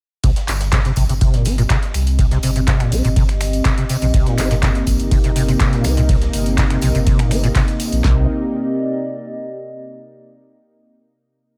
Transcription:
0.24 sub bass C2, acid bass C3, ambient pad C4, kick, closed hi-hat, ride, tambourine
0.30 ambient pad G4
0.36 snare, closed hi-hat
0.48 sub bass G1, ambient pad D#5, clap, open hi-hat, ride, tambourine
0.61 snare, closed hi-hat, tambourine
0.72 acid bass C3, kick, snare, clap, closed hi-hat, ride
0.85 acid bass C3, closed hi-hat
0.96 sub bass A#1, acid bass C3, kick, open hi-hat, ride, tambourine
1.09 sub bass G1, acid bass C3, closed hi-hat, tambourine
1.21 acid bass C3, kick, closed hi-hat, open hi-hat, tambourine
1.34 acid bass A#2, snare, closed hi-hat
1.45 acid bass C4, open hi-hat, ride, tambourine
1.58 acid bass A#2, closed hi-hat, tambourine
1.70 acid bass C3, kick, snare, clap, closed hi-hat, ride
1.83 closed hi-hat
1.94 sub bass C2, finger snap, open hi-hat, ride, tambourine
2.07 closed hi-hat, tambourine
2.19 acid bass C3, kick, closed hi-hat, ride, tambourine
2.31 acid bass C3, snare, closed hi-hat
2.43 sub bass G1, acid bass C3, open hi-hat, ride, tambourine
2.56 acid bass C3, closed hi-hat, tambourine
2.67 acid bass C3, kick, snare, clap, closed hi-hat, ride
2.80 acid bass A#2, finger snap, closed hi-hat
2.92 sub bass A#1, acid bass C4, open hi-hat, ride, tambourine
3.04 sub bass G1, acid bass A#2, closed hi-hat, tambourine
3.16 acid bass C3, kick, closed hi-hat, ride, tambourine
3.29 finger snap, closed hi-hat
3.40 finger snap, open hi-hat, ride, tambourine
3.53 closed hi-hat, tambourine
3.65 acid bass C3, kick, snare, clap, closed hi-hat, ride, tambourine
3.78 acid bass C3, closed hi-hat
3.89 acid bass C3, open hi-hat, ride, tambourine
4.01 sub bass A#1, acid bass C3, closed hi-hat, tambourine
4.14 sub bass C2, acid bass C3, analog synth pad C3 A#3 D#4, kick, closed hi-hat, ride, tambourine
4.26 acid bass A#2, snare, closed hi-hat
4.38 sub bass G1, acid bass C4, clap, open hi-hat, ride, tambourine
4.51 acid bass A#2, snare, closed hi-hat, tambourine
4.62 acid bass C3, kick, snare, clap, closed hi-hat, ride, tambourine
4.75 closed hi-hat
4.87 sub bass A#1, kick, open hi-hat, ride, tambourine
4.99 sub bass G1, closed hi-hat, tambourine
5.11 acid bass C3, kick, closed hi-hat, open hi-hat, tambourine
5.24 acid bass C3, snare, closed hi-hat
5.36 acid bass C3, open hi-hat, ride, tambourine
5.48 acid bass C3, closed hi-hat, tambourine
5.60 acid bass C3, kick, snare, clap, closed hi-hat, ride
5.73 acid bass A#2, closed hi-hat
5.84 sub bass C2, acid bass C4, finger snap, open hi-hat, ride, tambourine
5.97 acid bass A#2, closed hi-hat, tambourine
6.09 acid bass C3, kick, closed hi-hat, ride, tambourine
6.22 snare, closed hi-hat
6.33 sub bass G1, open hi-hat, ride, tambourine
6.46 closed hi-hat, tambourine
6.57 acid bass C3, kick, snare, clap, closed hi-hat, ride, tambourine
6.70 acid bass C3, finger snap, closed hi-hat
6.81 sub bass A#1, acid bass C3, open hi-hat, ride, tambourine
6.95 sub bass G1, acid bass C3, closed hi-hat, tambourine
7.07 acid bass C3, kick, closed hi-hat, ride, tambourine
7.19 acid bass A#2, finger snap, closed hi-hat
7.31 acid bass C4, finger snap, open hi-hat, ride, tambourine
7.43 acid bass A#2, closed hi-hat, tambourine
7.55 acid bass C3, kick, snare, clap, closed hi-hat, ride
7.68 closed hi-hat
7.80 open hi-hat, ride, tambourine
7.92 sub bass A#1, closed hi-hat, tambourine
8.04 sub bass C2, acid bass C3, analog synth pad C3 A#3 D#4, ambient pad C4, kick, snare, clap
8.12 ambient pad G4
8.19 ambient pad D5
8.26 ambient pad D#5

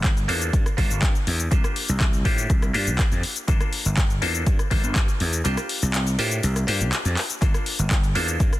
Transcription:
Already playing: slap bass G1, clav A#3 D4 F4 A4 C5
0.04 kick, clap, closed hi-hat, shaker
0.17 closed hi-hat, shaker
0.28 slap bass E2, clav A#3 D4 F4 A4 C5, open hi-hat
0.41 closed hi-hat, shaker
0.53 slap bass G2, kick, closed hi-hat, shaker
0.66 cross-stick, closed hi-hat, shaker
0.77 slap bass G1, clav A#3 D4 F4 A4 C5, kick, open hi-hat
0.90 slap bass G1, closed hi-hat, shaker
1.02 slap bass G2, kick, clap, closed hi-hat, shaker
1.15 closed hi-hat, shaker
1.27 slap bass E2, open hi-hat
1.40 closed hi-hat, shaker
1.51 slap bass C2, clav A#3 D4 F4 G4 C5, kick, closed hi-hat, shaker
1.64 cross-stick, closed hi-hat, shaker
1.76 open hi-hat
1.89 slap bass C2, closed hi-hat, shaker
2.01 kick, clap, closed hi-hat, shaker
2.13 closed hi-hat, shaker
2.25 slap bass A2, clav A#3 D4 F4 G4 C5, kick, open hi-hat
2.38 closed hi-hat, shaker
2.50 slap bass C2, kick, closed hi-hat, shaker
2.62 cross-stick, closed hi-hat, shaker
2.73 slap bass G2, clav A#3 D4 F4 G4 C5, open hi-hat
2.87 slap bass C2, closed hi-hat, shaker
2.99 kick, clap, closed hi-hat, shaker
3.12 slap bass F2, closed hi-hat, shaker
3.23 open hi-hat
3.36 closed hi-hat, shaker
3.48 slap bass G1, clav A#3 D4 F4 A4 C5, kick, closed hi-hat, shaker
3.61 cross-stick, closed hi-hat, shaker
3.73 open hi-hat
3.85 slap bass G1, closed hi-hat, shaker
3.97 kick, clap, closed hi-hat, shaker
4.10 closed hi-hat, shaker
4.22 slap bass E2, clav A#3 D4 F4 A4 C5, open hi-hat
4.35 shaker
4.47 slap bass G2, kick, closed hi-hat, shaker
4.59 cross-stick, closed hi-hat, shaker
4.70 slap bass G1, clav A#3 D4 F4 A4 C5, kick, open hi-hat
4.84 slap bass G1, closed hi-hat, shaker
4.96 slap bass G2, kick, clap, closed hi-hat, shaker
5.08 closed hi-hat, shaker
5.20 slap bass E2, open hi-hat
5.33 closed hi-hat, shaker
5.44 slap bass C2, clav A#3 D4 F4 G4 C5, closed hi-hat, shaker
5.57 cross-stick, closed hi-hat, shaker
5.69 open hi-hat
5.82 slap bass C2, closed hi-hat, shaker
5.94 clap, closed hi-hat, shaker
6.07 closed hi-hat, shaker
6.19 slap bass A2, clav A#3 D4 F4 G4 C5, open hi-hat
6.31 closed hi-hat, shaker
6.43 slap bass C2, closed hi-hat, shaker
6.56 cross-stick, closed hi-hat, shaker
6.67 slap bass G2, clav A#3 D4 F4 G4 C5, open hi-hat
6.81 slap bass C2, closed hi-hat, shaker
6.93 clap, closed hi-hat, shaker
7.05 slap bass F2, closed hi-hat, shaker
7.17 clap, open hi-hat
7.30 closed hi-hat, shaker
7.41 slap bass G1, clav A#3 D4 F4 A4 C5, kick, closed hi-hat, shaker
7.54 cross-stick, closed hi-hat, shaker
7.66 open hi-hat
7.79 slap bass G1, closed hi-hat, shaker
7.91 kick, clap, closed hi-hat, shaker
8.04 closed hi-hat, shaker
8.15 slap bass E2, clav A#3 D4 F4 A4 C5, open hi-hat
8.28 closed hi-hat, shaker
8.40 slap bass G2, kick, closed hi-hat, shaker
8.53 cross-stick, closed hi-hat, shaker

